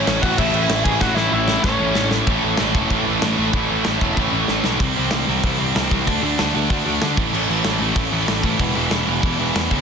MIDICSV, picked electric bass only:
0, 0, Header, 1, 2, 480
1, 0, Start_track
1, 0, Key_signature, 3, "major"
1, 0, Tempo, 315956
1, 1548, Time_signature, 4, 2, 24, 8
1, 14903, End_track
2, 0, Start_track
2, 0, Title_t, "Picked electric bass"
2, 0, Program_c, 0, 34
2, 109, Note_on_c, 0, 33, 98
2, 296, Note_off_c, 0, 33, 0
2, 342, Note_on_c, 0, 33, 85
2, 532, Note_off_c, 0, 33, 0
2, 583, Note_on_c, 0, 33, 97
2, 772, Note_off_c, 0, 33, 0
2, 813, Note_on_c, 0, 33, 89
2, 1006, Note_off_c, 0, 33, 0
2, 1051, Note_on_c, 0, 33, 93
2, 1244, Note_off_c, 0, 33, 0
2, 1287, Note_on_c, 0, 33, 97
2, 1482, Note_off_c, 0, 33, 0
2, 1534, Note_on_c, 0, 33, 99
2, 1726, Note_off_c, 0, 33, 0
2, 1768, Note_on_c, 0, 33, 92
2, 1961, Note_off_c, 0, 33, 0
2, 2003, Note_on_c, 0, 33, 97
2, 2384, Note_off_c, 0, 33, 0
2, 2494, Note_on_c, 0, 33, 94
2, 2685, Note_off_c, 0, 33, 0
2, 2736, Note_on_c, 0, 33, 91
2, 2926, Note_off_c, 0, 33, 0
2, 2965, Note_on_c, 0, 33, 92
2, 3345, Note_off_c, 0, 33, 0
2, 3446, Note_on_c, 0, 33, 94
2, 3614, Note_off_c, 0, 33, 0
2, 3710, Note_on_c, 0, 33, 89
2, 3870, Note_off_c, 0, 33, 0
2, 3946, Note_on_c, 0, 33, 91
2, 4108, Note_off_c, 0, 33, 0
2, 4172, Note_on_c, 0, 28, 83
2, 4338, Note_off_c, 0, 28, 0
2, 4411, Note_on_c, 0, 33, 94
2, 4577, Note_off_c, 0, 33, 0
2, 4670, Note_on_c, 0, 33, 88
2, 4830, Note_off_c, 0, 33, 0
2, 4902, Note_on_c, 0, 33, 85
2, 5065, Note_off_c, 0, 33, 0
2, 5145, Note_on_c, 0, 33, 90
2, 5307, Note_off_c, 0, 33, 0
2, 5368, Note_on_c, 0, 33, 99
2, 5535, Note_off_c, 0, 33, 0
2, 5623, Note_on_c, 0, 33, 87
2, 5785, Note_off_c, 0, 33, 0
2, 5876, Note_on_c, 0, 33, 89
2, 6034, Note_off_c, 0, 33, 0
2, 6100, Note_on_c, 0, 28, 79
2, 6263, Note_off_c, 0, 28, 0
2, 6327, Note_on_c, 0, 33, 88
2, 6495, Note_off_c, 0, 33, 0
2, 6571, Note_on_c, 0, 33, 84
2, 6737, Note_off_c, 0, 33, 0
2, 6823, Note_on_c, 0, 33, 80
2, 6986, Note_off_c, 0, 33, 0
2, 7059, Note_on_c, 0, 35, 87
2, 7223, Note_off_c, 0, 35, 0
2, 7291, Note_on_c, 0, 36, 92
2, 7471, Note_off_c, 0, 36, 0
2, 7562, Note_on_c, 0, 36, 82
2, 7731, Note_off_c, 0, 36, 0
2, 7784, Note_on_c, 0, 36, 88
2, 7960, Note_off_c, 0, 36, 0
2, 8024, Note_on_c, 0, 36, 78
2, 8200, Note_off_c, 0, 36, 0
2, 8257, Note_on_c, 0, 36, 82
2, 8436, Note_off_c, 0, 36, 0
2, 8499, Note_on_c, 0, 36, 82
2, 8677, Note_off_c, 0, 36, 0
2, 8746, Note_on_c, 0, 36, 84
2, 8922, Note_off_c, 0, 36, 0
2, 8978, Note_on_c, 0, 36, 85
2, 9157, Note_off_c, 0, 36, 0
2, 9216, Note_on_c, 0, 38, 91
2, 9395, Note_off_c, 0, 38, 0
2, 9461, Note_on_c, 0, 38, 83
2, 9639, Note_off_c, 0, 38, 0
2, 9732, Note_on_c, 0, 38, 96
2, 9898, Note_off_c, 0, 38, 0
2, 9964, Note_on_c, 0, 38, 82
2, 10134, Note_off_c, 0, 38, 0
2, 10180, Note_on_c, 0, 38, 88
2, 10359, Note_off_c, 0, 38, 0
2, 10424, Note_on_c, 0, 38, 82
2, 10601, Note_off_c, 0, 38, 0
2, 10676, Note_on_c, 0, 50, 84
2, 10849, Note_off_c, 0, 50, 0
2, 10896, Note_on_c, 0, 33, 95
2, 11077, Note_off_c, 0, 33, 0
2, 11133, Note_on_c, 0, 33, 93
2, 11315, Note_off_c, 0, 33, 0
2, 11374, Note_on_c, 0, 33, 86
2, 11556, Note_off_c, 0, 33, 0
2, 11626, Note_on_c, 0, 33, 89
2, 11803, Note_off_c, 0, 33, 0
2, 11850, Note_on_c, 0, 33, 77
2, 12034, Note_off_c, 0, 33, 0
2, 12086, Note_on_c, 0, 33, 88
2, 12271, Note_off_c, 0, 33, 0
2, 12336, Note_on_c, 0, 33, 84
2, 12518, Note_off_c, 0, 33, 0
2, 12582, Note_on_c, 0, 33, 84
2, 12761, Note_off_c, 0, 33, 0
2, 12817, Note_on_c, 0, 33, 90
2, 12999, Note_off_c, 0, 33, 0
2, 13053, Note_on_c, 0, 28, 91
2, 13236, Note_off_c, 0, 28, 0
2, 13296, Note_on_c, 0, 28, 85
2, 13478, Note_off_c, 0, 28, 0
2, 13533, Note_on_c, 0, 28, 88
2, 13716, Note_off_c, 0, 28, 0
2, 13781, Note_on_c, 0, 28, 81
2, 13962, Note_off_c, 0, 28, 0
2, 14020, Note_on_c, 0, 28, 86
2, 14201, Note_off_c, 0, 28, 0
2, 14273, Note_on_c, 0, 28, 86
2, 14450, Note_off_c, 0, 28, 0
2, 14509, Note_on_c, 0, 40, 86
2, 14687, Note_off_c, 0, 40, 0
2, 14758, Note_on_c, 0, 37, 83
2, 14903, Note_off_c, 0, 37, 0
2, 14903, End_track
0, 0, End_of_file